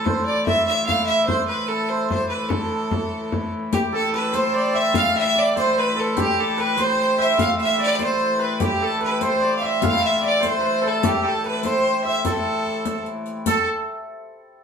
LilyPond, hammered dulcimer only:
\new Staff \with { instrumentName = "Hammered dulcimer" } { \time 6/8 \key a \minor \tempo 4. = 98 c''8 d''8 e''8 e''4 e''8 | c''8 b'8 a'8 c''8 c''8 b'8 | a'2~ a'8 r8 | g'8 a'8 b'8 c''8 d''8 e''8 |
f''8 e''8 d''8 c''4 a'8 | g'4 b'8 c''4 e''8 | f''8 e''8 d''8 c''4 b'8 | g'8 a'8 b'8 c''8 d''8 e''8 |
f''8 e''16. e''32 d''8 c''8 b'8 a'8 | g'8 a'8 b'8 c''4 e''8 | a'2 r4 | a'8 r2 r8 | }